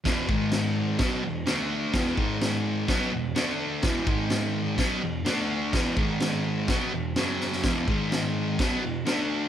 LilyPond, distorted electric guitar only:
\new Staff \with { instrumentName = "Distorted electric guitar" } { \clef bass \time 4/4 \key e \major \tempo 4 = 127 <e, b, e>8 <gis, dis gis>4. <b, fis b>8 <e, b,>8 <d a d'>4 | <e, b, e>8 <gis, dis gis>4. <b, fis b>8 <e, b,>8 <d a d'>4 | <e, b, e>8 <gis, dis gis>4. <b, fis b>8 <e, b,>8 <d a d'>4 | <e, b, e>8 <gis, dis gis>4. <b, fis b>8 <e, b,>8 <fis, cis fis>4 |
<e, b, e>8 <gis, dis gis>4. <b, fis b>8 <e, b,>8 <d a d'>4 | }